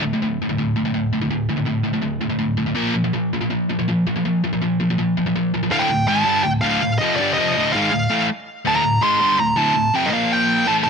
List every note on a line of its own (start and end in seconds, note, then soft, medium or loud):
0.03 0.13 D2 medium
0.03 0.12 A2 medium
0.13 0.21 D2 medium
0.13 0.21 A2 medium
0.22 0.39 D2 medium
0.22 0.39 A2 medium
0.42 0.48 D2 medium
0.42 0.48 A2 medium
0.49 0.57 D2 medium
0.49 0.57 A2 medium
0.58 0.75 D2 medium
0.58 0.75 A2 medium
0.76 0.84 D2 medium
0.76 0.84 A2 medium
0.85 0.93 D2 medium
0.85 0.93 A2 medium
0.94 1.11 D2 medium
0.94 1.11 A2 medium
1.13 1.20 D2 medium
1.13 1.20 A2 medium
1.21 1.29 D2 medium
1.21 1.30 A2 medium
1.31 1.48 D2 medium
1.31 1.48 A2 medium
1.49 1.56 D2 medium
1.49 1.56 A2 medium
1.57 1.65 D2 medium
1.57 1.66 A2 medium
1.66 1.84 D2 medium
1.66 1.83 A2 medium
1.84 1.93 D2 medium
1.84 1.92 A2 medium
1.94 2.01 D2 medium
1.94 2.01 A2 medium
2.02 2.20 D2 medium
2.02 2.20 A2 medium
2.21 2.29 D2 medium
2.21 2.28 A2 medium
2.30 2.38 D2 medium
2.30 2.38 A2 medium
2.39 2.56 D2 medium
2.39 2.56 A2 medium
2.57 2.66 D2 medium
2.57 2.65 A2 medium
2.66 2.74 D2 medium
2.66 2.75 A2 medium
2.75 2.94 A#2 medium
2.75 2.94 F3 medium
2.75 2.95 A#3 medium
2.95 3.03 A#2 medium
2.95 3.03 F3 medium
3.04 3.12 A#2 medium
3.04 3.13 F3 medium
3.13 3.31 A#2 medium
3.13 3.31 F3 medium
3.33 3.40 A#2 medium
3.33 3.40 F3 medium
3.41 3.49 A#2 medium
3.41 3.50 F3 medium
3.50 3.68 A#2 medium
3.50 3.68 F3 medium
3.70 3.78 A#2 medium
3.70 3.78 F3 medium
3.79 3.87 A#2 medium
3.79 3.88 F3 medium
3.88 4.05 A#2 medium
3.88 4.05 F3 medium
4.07 4.15 A#2 medium
4.07 4.15 F3 medium
4.16 4.24 A#2 medium
4.16 4.24 F3 medium
4.25 4.42 A#2 medium
4.25 4.42 F3 medium
4.44 4.52 A#2 medium
4.44 4.52 F3 medium
4.53 4.60 A#2 medium
4.53 4.61 F3 medium
4.62 4.78 A#2 medium
4.62 4.79 F3 medium
4.80 4.89 A#2 medium
4.80 4.89 F3 medium
4.90 4.97 A#2 medium
4.90 4.98 F3 medium
4.98 5.15 A#2 medium
4.98 5.15 F3 medium
5.17 5.25 A#2 medium
5.17 5.25 F3 medium
5.26 5.34 A#2 medium
5.26 5.35 F3 medium
5.36 5.52 A#2 medium
5.36 5.52 F3 medium
5.54 5.62 A#2 medium
5.54 5.62 F3 medium
5.63 5.70 A#2 medium
5.63 5.71 F3 medium
5.70 5.88 D2 medium
5.70 5.89 A2 loud
5.70 5.89 D3 loud
5.70 5.81 F5 loud
5.79 6.07 G5 loud
5.90 6.05 D2 medium
5.90 6.05 A2 medium
6.07 6.24 G#2 medium
6.07 6.25 D#3 medium
6.07 6.26 G#3 loud
6.07 6.43 A5 loud
6.25 6.44 G2 medium
6.25 6.44 D3 loud
6.25 6.44 G3 loud
6.44 6.59 D2 medium
6.44 6.59 A2 medium
6.44 6.49 G5 loud
6.61 6.81 D2 medium
6.61 6.81 A2 loud
6.61 6.81 D3 loud
6.61 6.98 F5 medium
6.82 6.96 D2 medium
6.82 6.97 A2 medium
6.98 7.18 F2 medium
6.98 7.18 C3 loud
6.98 7.19 F3 loud
6.98 7.16 D#5 medium
7.16 7.37 G2 medium
7.16 7.37 D3 loud
7.16 7.33 D5 medium
7.21 7.37 G3 loud
7.33 7.72 D#5 medium
7.38 7.55 F2 loud
7.38 7.55 C3 loud
7.38 7.56 F3 loud
7.56 7.73 D2 loud
7.56 7.74 A2 loud
7.56 7.74 D3 loud
7.73 7.91 G#2 medium
7.73 7.92 D#3 loud
7.73 7.92 G#3 loud
7.73 7.89 F5 medium
7.90 8.06 D2 medium
7.90 8.07 A2 medium
7.90 8.25 F5 medium
8.10 8.27 A2 medium
8.10 8.28 E3 loud
8.10 8.28 A3 loud
8.65 8.82 D2 medium
8.65 8.83 A2 loud
8.65 8.84 D3 loud
8.65 8.75 A5 loud
8.76 9.01 A#5 loud
8.83 8.98 D2 medium
8.83 8.98 A2 medium
9.01 9.19 G#2 medium
9.01 9.20 D#3 loud
9.01 9.20 G#3 loud
9.01 9.36 C6 loud
9.20 9.38 G2 loud
9.20 9.38 D3 medium
9.20 9.38 G3 loud
9.39 9.53 D2 medium
9.39 9.53 A2 medium
9.39 9.57 A#5 loud
9.56 9.73 D2 medium
9.56 9.74 A2 medium
9.56 9.75 D3 loud
9.56 9.95 A5 loud
9.74 9.89 D2 medium
9.74 9.90 A2 medium
9.94 10.11 F2 medium
9.94 10.13 C3 medium
9.94 10.12 F3 loud
9.94 10.09 G5 medium
10.06 10.11 D#5 medium
10.11 10.66 A#2 medium
10.11 10.66 F3 loud
10.11 10.67 A#3 loud
10.11 10.32 F5 loud
10.32 10.68 G5 medium
10.66 10.84 A2 medium
10.66 10.85 E3 medium
10.66 10.85 A3 loud
10.66 10.72 A5 medium
10.84 10.90 D2 medium
10.84 10.90 A5 medium